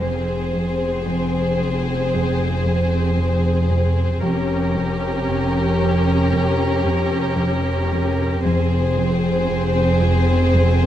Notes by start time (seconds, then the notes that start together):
0.02 F1 F2 C4 G#4 C5
0.55 F2
1.07 F2
1.60 F3
2.12 F2
2.65 F2
3.18 F2
3.71 F2
4.23 F1 F2 C#4 G4 A#4
4.75 F2
5.28 F2
5.80 F3
6.33 F2
6.87 F2
7.39 F2
7.92 F2
8.44 F1 F2 C4 G#4 C5
8.97 F2
9.49 F2
10.01 F3
10.54 F2